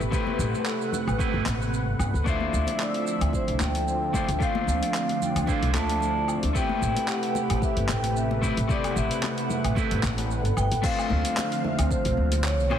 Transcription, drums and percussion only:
0.01 shaker
0.12 kick, shaker
0.27 high conga
0.39 low conga, shaker
0.55 shaker
0.66 clap, shaker
0.81 shaker
0.92 low conga, shaker
1.08 low woodblock, shaker
1.19 kick, shaker
1.45 clap, high conga, shaker
1.62 shaker
1.74 shaker
1.99 low woodblock, shaker
2.15 shaker
2.26 kick, muted conga, shaker
2.40 high conga
2.54 shaker
2.67 open hi-hat, muted conga, shaker
2.80 clap, shaker
2.94 open hi-hat
3.07 shaker
3.21 open hi-hat, muted conga, low woodblock, shaker
3.33 kick, shaker
3.48 open hi-hat
3.60 clap, muted conga, high conga, shaker
3.75 open hi-hat, shaker
3.88 shaker
4.14 kick, muted conga, low conga, shaker
4.29 open hi-hat, shaker
4.40 kick, shaker
4.55 muted conga, high conga
4.68 shaker
4.83 open hi-hat, shaker
4.94 clap, shaker
5.09 open hi-hat, muted conga
5.22 low conga, shaker
5.36 open hi-hat, low woodblock, shaker
5.47 kick, muted conga, shaker
5.63 open hi-hat
5.74 clap, high conga, shaker
5.89 open hi-hat, shaker
6.00 muted conga, shaker
6.28 low woodblock, shaker
6.43 open hi-hat, muted conga, shaker
6.55 kick, shaker
6.69 high conga
6.83 shaker
6.96 open hi-hat, muted conga, shaker
7.08 clap, shaker
7.23 open hi-hat
7.35 muted conga, shaker
7.50 open hi-hat, low woodblock, shaker
7.62 kick, shaker
7.77 open hi-hat
7.89 clap, muted conga, high conga, shaker
8.04 open hi-hat, shaker
8.17 shaker
8.31 muted conga
8.42 kick, low conga, shaker
8.57 open hi-hat, shaker
8.69 kick, shaker
8.84 open hi-hat, muted conga, high conga, low woodblock, shaker
8.97 shaker
9.11 open hi-hat, shaker
9.23 clap, muted conga, shaker
9.38 open hi-hat, shaker
9.49 low conga, shaker
9.64 open hi-hat, low woodblock, shaker
9.76 kick, muted conga, shaker
9.91 open hi-hat
10.03 kick, clap, high conga, shaker
10.18 open hi-hat, muted conga, shaker
10.31 shaker
10.45 open hi-hat, shaker
10.57 low woodblock, shaker
10.72 open hi-hat, muted conga, shaker
10.84 kick, crash, muted conga, shaker
10.99 low woodblock, shaker
11.10 high conga, low conga
11.25 open hi-hat, shaker
11.37 clap, muted conga, shaker
11.52 open hi-hat, shaker
11.64 high conga, low conga
11.79 open hi-hat, muted conga, low woodblock, shaker
11.91 kick, shaker
12.05 open hi-hat, shaker
12.17 high conga
12.32 open hi-hat, muted conga, shaker
12.44 clap, shaker
12.60 shaker
12.71 muted conga, high conga, low woodblock

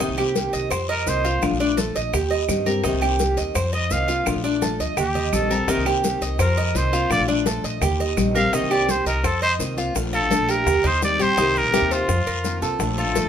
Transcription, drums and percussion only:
0.00 high bongo, high conga, long guiro, maracas
0.18 high conga, claves, maracas
0.36 high bongo, high conga, short guiro, maracas
0.53 high bongo, short guiro, maracas
0.71 high bongo, high conga, long guiro, claves, maracas
0.89 high bongo, high conga, maracas
1.07 high bongo, low bongo, high conga, short guiro, maracas
1.25 high bongo, high conga, short guiro, maracas
1.42 high bongo, high conga, long guiro, claves, maracas
1.60 high conga, maracas
1.78 high bongo, high conga, short guiro, maracas
1.96 high bongo, short guiro, maracas
2.13 high bongo, high conga, low conga, long guiro, claves, maracas
2.31 high bongo, high conga, maracas
2.49 high bongo, low bongo, high conga, short guiro, claves, maracas
2.66 high bongo, high conga, short guiro, maracas
2.84 high bongo, long guiro, maracas
3.02 high conga, claves, maracas
3.19 high bongo, high conga, short guiro, maracas
3.37 high bongo, short guiro, maracas
3.55 high bongo, high conga, long guiro, claves, maracas
3.73 high bongo, high conga, maracas
3.91 high bongo, low bongo, high conga, short guiro, maracas
4.09 high bongo, high conga, short guiro, maracas
4.26 high bongo, high conga, long guiro, claves, maracas
4.44 high conga, maracas
4.62 high bongo, high conga, short guiro, maracas
4.80 high bongo, short guiro, maracas
4.97 high bongo, high conga, low conga, long guiro, claves, maracas
5.15 high bongo, high conga, low conga, maracas
5.33 high bongo, low bongo, high conga, short guiro, claves, maracas
5.51 high bongo, high conga, short guiro, maracas
5.68 high bongo, high conga, long guiro, maracas
5.86 high conga, claves, maracas
6.04 high bongo, high conga, short guiro, maracas
6.22 high bongo, short guiro, maracas
6.39 high bongo, high conga, long guiro, claves, maracas
6.57 high bongo, high conga, maracas
6.75 high bongo, low bongo, high conga, short guiro, maracas
6.93 high bongo, high conga, short guiro, maracas
7.10 high bongo, high conga, long guiro, claves, maracas
7.28 high conga, maracas
7.46 high bongo, high conga, short guiro, maracas
7.64 high bongo, short guiro, maracas
7.82 high bongo, high conga, low conga, long guiro, claves, maracas
8.00 high bongo, high conga, maracas
8.17 high bongo, low bongo, high conga, short guiro, claves, maracas
8.35 high bongo, high conga, short guiro, maracas
8.53 high bongo, long guiro, maracas
8.71 high conga, claves, maracas
8.89 high bongo, high conga, short guiro, maracas
9.06 high bongo, short guiro, maracas
9.24 high bongo, high conga, long guiro, claves, maracas
9.42 high bongo, high conga, maracas
9.60 high bongo, low bongo, high conga, short guiro, maracas
9.77 high bongo, high conga, short guiro, maracas
9.95 high bongo, high conga, long guiro, maracas
10.13 high conga, maracas
10.31 high bongo, high conga, short guiro, maracas
10.49 high bongo, short guiro, maracas
10.66 high bongo, high conga, low conga, long guiro, maracas
10.85 high bongo, high conga, low conga, maracas
11.02 high bongo, low bongo, high conga, short guiro, maracas
11.20 high bongo, high conga, short guiro, maracas
11.38 high bongo, high conga, long guiro, maracas
11.56 high conga, maracas
11.74 high bongo, high conga, short guiro, maracas
11.91 high bongo, short guiro, maracas
12.09 high bongo, high conga, long guiro, maracas
12.27 high bongo, high conga, maracas
12.44 high bongo, low bongo, high conga, short guiro, maracas
12.62 high bongo, high conga, short guiro, maracas
12.80 high bongo, high conga, long guiro, maracas
12.98 high conga, maracas
13.15 high bongo, high conga, short guiro, maracas

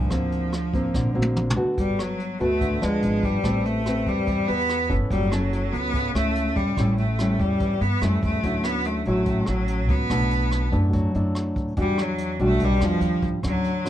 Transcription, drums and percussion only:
0.10 kick, cross-stick, closed hi-hat
0.32 closed hi-hat
0.53 cross-stick, closed hi-hat
0.74 kick, closed hi-hat
0.94 kick, snare
1.22 high tom
1.36 mid tom
1.50 mid tom
1.78 kick, closed hi-hat
1.99 cross-stick, closed hi-hat
2.20 closed hi-hat
2.41 closed hi-hat
2.61 kick, closed hi-hat
2.82 cross-stick, closed hi-hat
3.02 closed hi-hat
3.23 kick, closed hi-hat
3.44 kick, cross-stick, closed hi-hat
3.65 closed hi-hat
3.86 cross-stick, closed hi-hat
4.06 kick, closed hi-hat
4.27 kick, closed hi-hat
4.49 closed hi-hat
4.69 cross-stick, closed hi-hat
4.90 kick, closed hi-hat
5.11 kick, closed hi-hat
5.32 cross-stick, closed hi-hat
5.53 closed hi-hat
5.74 closed hi-hat
5.94 kick, closed hi-hat
6.15 cross-stick, closed hi-hat
6.35 closed hi-hat
6.56 kick, closed hi-hat
6.77 kick, cross-stick, closed hi-hat
6.98 closed hi-hat
7.19 cross-stick, closed hi-hat
7.39 kick, closed hi-hat
7.60 kick, closed hi-hat
7.81 closed hi-hat
8.02 cross-stick, closed hi-hat
8.23 kick, closed hi-hat
8.43 kick, closed hi-hat
8.64 cross-stick, closed hi-hat
8.84 closed hi-hat
9.05 closed hi-hat
9.26 kick, closed hi-hat
9.46 cross-stick, closed hi-hat
9.68 closed hi-hat
9.89 kick, closed hi-hat
10.10 kick, cross-stick, closed hi-hat
10.31 closed hi-hat
10.51 cross-stick, closed hi-hat
10.73 kick, closed hi-hat
10.93 kick, closed hi-hat
11.14 closed hi-hat
11.35 cross-stick, closed hi-hat
11.56 kick, closed hi-hat
11.77 kick, closed hi-hat
11.98 cross-stick, closed hi-hat
12.18 closed hi-hat
12.39 closed hi-hat
12.60 kick, closed hi-hat
12.80 cross-stick, closed hi-hat
13.01 closed hi-hat
13.22 kick, closed hi-hat
13.43 kick, cross-stick, closed hi-hat
13.64 closed hi-hat
13.85 cross-stick, closed hi-hat

